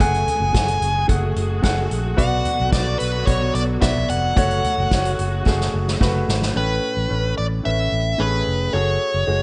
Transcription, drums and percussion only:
0.00 kick loud
0.00 closed hi-hat loud
0.14 closed hi-hat soft
0.28 closed hi-hat medium
0.28 floor tom medium
0.55 kick loud
0.55 snare loud
0.55 closed hi-hat medium
0.68 closed hi-hat medium
0.82 closed hi-hat medium
1.09 kick loud
1.09 closed hi-hat medium
1.36 closed hi-hat medium
1.63 kick loud
1.63 snare loud
1.63 closed hi-hat medium
1.91 closed hi-hat medium
2.18 kick loud
2.18 closed hi-hat medium
2.45 closed hi-hat medium
2.45 floor tom medium
2.72 kick loud
2.72 snare loud
2.72 closed hi-hat medium
3.00 closed hi-hat medium
3.27 kick loud
3.27 closed hi-hat medium
3.55 closed hi-hat medium
3.82 kick loud
3.82 snare loud
3.82 closed hi-hat medium
3.96 floor tom medium
4.09 closed hi-hat medium
4.37 kick loud
4.37 closed hi-hat loud
4.51 closed hi-hat soft
4.64 closed hi-hat medium
4.64 floor tom medium
4.91 kick loud
4.91 snare loud
4.91 closed hi-hat medium
5.05 closed hi-hat medium
5.19 closed hi-hat medium
5.46 kick loud
5.46 snare medium
5.60 snare medium
5.88 snare medium
6.01 kick loud
6.01 snare medium
6.28 snare medium
6.42 snare medium

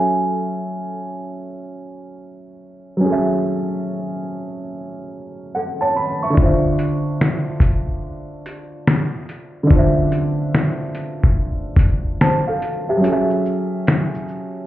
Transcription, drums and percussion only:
6.37 kick loud
6.79 closed hi-hat medium
7.21 finger snap medium
7.21 snare medium
7.60 kick medium
7.60 closed hi-hat medium
8.46 closed hi-hat medium
8.87 finger snap medium
8.87 snare loud
9.29 closed hi-hat medium
9.71 kick loud
10.12 closed hi-hat medium
10.54 finger snap medium
10.54 snare medium
10.95 closed hi-hat medium
11.23 kick medium
11.76 kick loud
11.76 closed hi-hat medium
12.21 finger snap medium
12.21 snare medium
12.62 closed hi-hat medium
13.04 closed hi-hat medium
13.04 shaker medium
13.30 shaker soft
13.45 shaker soft
13.87 finger snap medium
13.87 snare medium
13.87 closed hi-hat medium
13.87 shaker medium
14.14 shaker soft
14.28 shaker soft

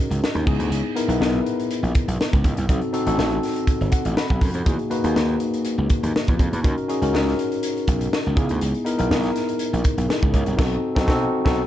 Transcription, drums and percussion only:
0.11 closed hi-hat medium
0.24 snare loud
0.36 closed hi-hat soft
0.47 kick loud
0.47 crash medium
0.60 closed hi-hat medium
0.72 closed hi-hat loud
0.96 closed hi-hat medium
1.10 closed hi-hat medium
1.22 snare loud
1.46 closed hi-hat medium
1.60 closed hi-hat medium
1.71 closed hi-hat medium
1.84 closed hi-hat soft
1.95 kick medium
1.95 closed hi-hat medium
2.08 closed hi-hat medium
2.21 snare loud
2.33 kick loud
2.33 closed hi-hat soft
2.44 kick medium
2.44 closed hi-hat medium
2.57 closed hi-hat medium
2.69 kick loud
2.69 closed hi-hat loud
2.82 closed hi-hat soft
2.94 closed hi-hat medium
3.07 closed hi-hat medium
3.19 snare loud
3.31 closed hi-hat soft
3.43 snare soft
3.43 open hi-hat medium
3.56 closed hi-hat medium
3.67 kick medium
3.67 closed hi-hat medium
3.81 closed hi-hat soft
3.92 kick medium
3.92 closed hi-hat medium
4.05 closed hi-hat medium
4.17 snare loud
4.30 kick medium
4.41 kick medium
4.41 open hi-hat medium
4.54 closed hi-hat medium
4.66 kick loud
4.66 closed hi-hat loud
4.79 closed hi-hat soft
4.91 closed hi-hat medium
5.04 closed hi-hat medium
5.16 snare loud
5.40 closed hi-hat medium
5.54 closed hi-hat medium
5.65 closed hi-hat medium
5.90 kick medium
5.90 closed hi-hat medium
6.04 closed hi-hat medium
6.16 snare loud
6.28 kick loud
6.28 closed hi-hat soft
6.39 kick loud
6.39 closed hi-hat medium
6.53 closed hi-hat medium
6.64 kick loud
6.64 closed hi-hat loud
6.78 closed hi-hat soft
6.90 closed hi-hat medium
7.02 closed hi-hat medium
7.15 snare loud
7.28 snare soft
7.39 closed hi-hat medium
7.52 closed hi-hat medium
7.63 closed hi-hat medium
7.77 closed hi-hat soft
7.87 kick medium
7.87 closed hi-hat medium
8.01 closed hi-hat medium
8.13 snare loud
8.37 kick loud
8.37 closed hi-hat medium
8.49 closed hi-hat medium
8.61 closed hi-hat loud
8.74 closed hi-hat soft
8.86 closed hi-hat medium
8.99 closed hi-hat medium
9.11 snare loud
9.23 snare soft
9.23 closed hi-hat soft
9.36 snare soft
9.36 closed hi-hat medium
9.49 closed hi-hat medium
9.59 closed hi-hat medium
9.74 closed hi-hat soft
9.84 kick medium
9.84 closed hi-hat medium
9.98 closed hi-hat medium
10.10 snare loud
10.23 kick loud
10.34 kick medium
10.34 closed hi-hat medium
10.46 closed hi-hat medium
10.59 kick loud
10.59 snare loud
10.59 crash medium
10.96 kick loud
10.96 snare loud
11.08 kick loud
11.08 snare loud
11.46 kick loud
11.46 snare loud

